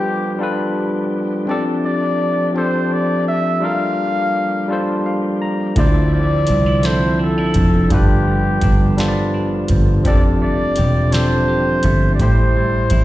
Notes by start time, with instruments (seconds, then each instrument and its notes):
Already playing: tonewheel organ F3 B3 D4 G4, tine electric piano G3 D4 F4 A4 B4, flugelhorn G4
0.38 tine electric piano G3 D4 F4 A4
0.43 tine electric piano B4
1.46 tine electric piano F3 C4 D4 G4, tonewheel organ F3 A3 G4, flugelhorn D5
1.51 tine electric piano A4
1.85 flugelhorn D5
2.53 tine electric piano F3 C4 D4 G4
2.57 tine electric piano A4, flugelhorn C5
2.93 flugelhorn D5
3.28 flugelhorn E5
3.60 tine electric piano G3 D4 F4 A4, tonewheel organ G3 A#3
3.65 tine electric piano A#4, flugelhorn F5
4.68 tine electric piano G3 D4 F4 A4
4.73 tine electric piano C5
5.06 tine electric piano F5
5.42 tine electric piano A#5
5.75 fingered electric bass D2, tine electric piano D3 D4 E4 F4, tonewheel organ D3 C4 E5, clean electric guitar D3, flugelhorn D5, kick, closed hi-hat
5.80 tine electric piano C5
6.13 clean electric guitar F3, flugelhorn D5
6.47 fingered electric bass C2, clean electric guitar D4, closed hi-hat
6.66 clean electric guitar E4
6.82 tine electric piano D3 F3 D4 E4, clean electric guitar C4, flugelhorn C5, snare, closed hi-hat
6.87 tine electric piano A4
7.19 clean electric guitar D4, flugelhorn A4
7.38 clean electric guitar E4
7.54 fingered electric bass F1, clean electric guitar F3, kick, closed hi-hat
7.89 fingered electric bass G1, clean electric guitar G2, tine electric piano G3 D4 F4 A4, tonewheel organ G3 B3 F4, flugelhorn G4, kick, closed hi-hat
7.94 tine electric piano B4
8.27 clean electric guitar F3
8.61 fingered electric bass G1, clean electric guitar D4, kick, closed hi-hat
8.97 tine electric piano G3 D4 F4 A4, clean electric guitar B3, snare, closed hi-hat
9.02 tine electric piano C5
9.08 tine electric piano D5
9.34 clean electric guitar D4
9.68 fingered electric bass G1, clean electric guitar F3, kick, closed hi-hat
10.04 fingered electric bass F1, tine electric piano F3 C4 D4 G4, clean electric guitar F3, tonewheel organ A3 F4, flugelhorn D5, kick, closed hi-hat
10.09 tine electric piano A4
10.42 clean electric guitar A3, flugelhorn D5
10.76 fingered electric bass E1, clean electric guitar G4, closed hi-hat
11.11 tine electric piano F3 C4 D4 G4, clean electric guitar D4, flugelhorn C5, snare, closed hi-hat
11.15 tine electric piano A4
11.48 clean electric guitar G4
11.83 fingered electric bass G1, clean electric guitar A3, kick, closed hi-hat
12.15 tine electric piano A2, flugelhorn D5
12.19 fingered electric bass A1, clean electric guitar A2, tonewheel organ C3 E4, tine electric piano A3 E4 G4, flugelhorn C5, kick, closed hi-hat
12.23 tine electric piano C5
12.57 clean electric guitar G3
12.90 fingered electric bass A1, clean electric guitar E4, kick, closed hi-hat